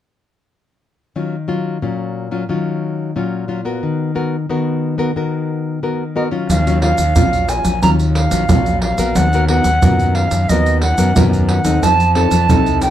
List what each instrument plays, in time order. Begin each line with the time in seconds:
1.16 nylon-string guitar D#3 F#3 C#4 F4
1.48 nylon-string guitar F#3 C#4 F4
1.82 nylon-string guitar A#2 F#3 C#4 F4
2.31 nylon-string guitar F#3 C#4 F4
2.49 nylon-string guitar D#3 F#3 C#4 F4
3.16 nylon-string guitar A#2 F#3 C#4 F4
3.48 nylon-string guitar F#3 C#4 F4
3.65 nylon-string guitar B3 F#4 A#4
3.83 nylon-string guitar D#3
4.15 nylon-string guitar B3 F#4 A#4
4.49 nylon-string guitar D#3 B3 F#4 A#4
4.98 nylon-string guitar B3 F#4 A#4
5.16 nylon-string guitar D#3 B3 F#4 A#4
5.83 nylon-string guitar D#3 B3 F#4 A#4
6.15 nylon-string guitar B3 F#4 A#4, flute D#5
6.31 nylon-string guitar F#3 C#4 F4
6.49 fingered electric bass D#2, nylon-string guitar D#3, flute F5, pandeiro, shaker, surdo
6.67 nylon-string guitar F#3 C#4 F4, pandeiro, shaker
6.82 nylon-string guitar F#3 C#4 F4, flute F5, pandeiro
6.98 fingered electric bass D#2, pandeiro, shaker, surdo
7.16 fingered electric bass A#1, nylon-string guitar A#2 F#3 C#4 F4, pandeiro, shaker, surdo
7.33 pandeiro, shaker
7.49 flute G#5, pandeiro, shaker
7.65 fingered electric bass A#1, pandeiro, shaker, surdo
7.82 fingered electric bass D#2, nylon-string guitar D#3 F#3 C#4 F4, flute A#5, pandeiro, shaker, surdo
7.99 pandeiro, shaker
8.15 flute F5, pandeiro
8.31 fingered electric bass A#1, nylon-string guitar F#3 C#4 F4, pandeiro, shaker, surdo
8.49 fingered electric bass A#1, nylon-string guitar A#2 F#3 C#4 F4, pandeiro, shaker, surdo
8.66 pandeiro, shaker
8.82 flute F5, pandeiro
8.98 fingered electric bass A#1, nylon-string guitar B3 F#4 A#4, pandeiro, shaker, surdo
9.15 fingered electric bass D#2, nylon-string guitar D#3, flute F#5, pandeiro, shaker, surdo
9.33 nylon-string guitar B3 F#4 A#4, pandeiro, shaker
9.48 nylon-string guitar B3 F#4 A#4, flute F#5, pandeiro
9.64 fingered electric bass D#2, pandeiro, shaker, surdo
9.82 fingered electric bass F#2, nylon-string guitar D#3 B3 F#4 A#4, pandeiro, shaker, surdo
10.00 pandeiro, shaker
10.15 flute F5, pandeiro
10.31 fingered electric bass F#2, pandeiro, shaker, surdo
10.49 fingered electric bass D#2, nylon-string guitar D#3 B3 F#4 A#4, flute D#5, pandeiro, shaker, surdo
10.66 pandeiro, shaker
10.82 flute F#5, pandeiro
10.98 fingered electric bass F#2, nylon-string guitar B3 F#4 A#4, pandeiro, shaker, surdo
11.16 fingered electric bass F#2, nylon-string guitar D#3 B3 F#4 A#4, pandeiro, shaker, surdo
11.33 pandeiro, shaker, surdo
11.49 flute F#5, pandeiro
11.65 fingered electric bass D#2, nylon-string guitar C4 D#4 A4, pandeiro, shaker, surdo
11.83 fingered electric bass F2, nylon-string guitar F3, flute A5, pandeiro, shaker, surdo
12.00 pandeiro, shaker
12.15 nylon-string guitar C4 D#4 A4, flute A5, pandeiro
12.31 fingered electric bass F2, pandeiro, shaker, surdo
12.49 fingered electric bass C2, nylon-string guitar C3 C4 D#4 A4, pandeiro, shaker, surdo
12.66 pandeiro, shaker
12.81 flute G5, pandeiro, shaker